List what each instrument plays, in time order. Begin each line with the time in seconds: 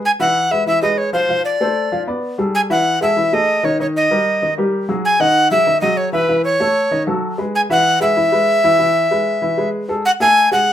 0.05 recorder G#5
0.20 upright piano E3 E4 E5, recorder F#5
0.51 upright piano G#3 G#4 B4, recorder E5
0.66 upright piano E3 E4 E5, recorder E5
0.82 upright piano G#3 G#4 B4, recorder D#5
0.98 recorder C#5
1.13 upright piano F3 F4 F5, recorder C5
1.29 upright piano F3 F4 F5
1.45 recorder D5
1.61 upright piano A3 A4 C5
1.92 upright piano F3 F4 F5
2.07 upright piano B3 B4 D5
2.38 upright piano G3 G#4 A4
2.55 recorder G#5
2.70 upright piano E3 E4 E5, recorder F#5
3.01 upright piano G#3 G#4 A4, recorder E5
3.16 upright piano E3 E4 E5
3.32 upright piano A3 G#4 A4, recorder D#5
3.63 upright piano D#3 D#4 D#5, recorder C#5
3.79 upright piano D#3 D#4 D#5, recorder C#5
3.96 recorder D#5
4.11 upright piano G3 G4 A#4
4.42 upright piano D#3 D#4 D#5
4.58 upright piano G3 G4 A#4
4.89 upright piano F#3 F#4 G#4
5.05 recorder G#5
5.20 upright piano D#3 D#4 D#5, recorder F#5
5.51 upright piano F#3 F#4 G#4, recorder E5
5.66 upright piano D#3 D#4 D#5
5.81 upright piano F#3 F#4 G#4, recorder D#5
5.97 recorder C#5
6.13 upright piano E3 E4 E5, recorder B4
6.29 upright piano E3 E4 E5
6.44 recorder C#5
6.60 upright piano A3 A4 C#5
6.91 upright piano D#3 D#4 D#5
7.07 upright piano F#3 F#4 A4
7.38 upright piano G#3 G#4 B4
7.55 recorder G#5
7.70 upright piano E3 E4 E5, recorder F#5
8.00 upright piano G#3 G#4 B4, recorder E5
8.17 upright piano E3 E4 E5
8.32 upright piano G#3 G#4 B4
8.64 upright piano E3 E4 E5
8.79 upright piano E3 E4
9.11 upright piano G#3 G#4 B4
9.42 upright piano E3 E4 E5
9.58 upright piano G#3 G#4 B4
9.89 upright piano G#3 G#4 A4
10.06 recorder F#5
10.20 upright piano A3 A4 E5, recorder G#5
10.51 upright piano G#3 G#4 G#5, recorder F#5